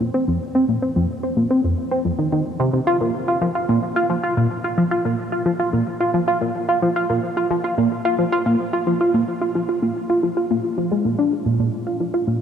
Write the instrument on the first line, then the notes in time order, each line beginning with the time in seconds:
synth arpeggio sound
0.01 A#2
0.14 C4
0.28 F2
0.55 C4
0.69 A#2
0.82 C4
0.96 F2
1.23 C4
1.37 A#2
1.51 C4
1.64 F2
1.91 C4
2.05 F2
2.19 D#3
2.32 D#3
2.60 C3
2.73 C3
2.87 F4
3.01 A#2
3.28 F4
3.41 F3
3.55 F4
3.69 A#2
3.96 F4
4.10 F3
4.23 F4
4.37 A#2
4.64 F4
4.78 F3
4.91 F4
5.05 A#2
5.32 F4
5.46 F3
5.60 F4
5.73 A#2
6.00 F4
6.14 F3
6.28 F4
6.41 A#2
6.69 F4
6.82 F3
6.96 F4
7.10 A#2
7.37 F4
7.51 F3
7.64 F4
7.78 A#2
8.05 F4
8.19 F3
8.32 F4
8.46 A#2
8.73 F4
8.87 F3
9.01 F4
9.14 A#2
9.41 F4
9.55 F3
9.69 F4
9.82 A#2
10.10 F4
10.23 F3
10.37 F4
10.51 A#2
10.78 F3
10.92 G#3
11.05 A#2
11.19 D4
11.46 A#2
11.59 A#2
11.87 F4
12.00 F3
12.14 F4
12.27 A#2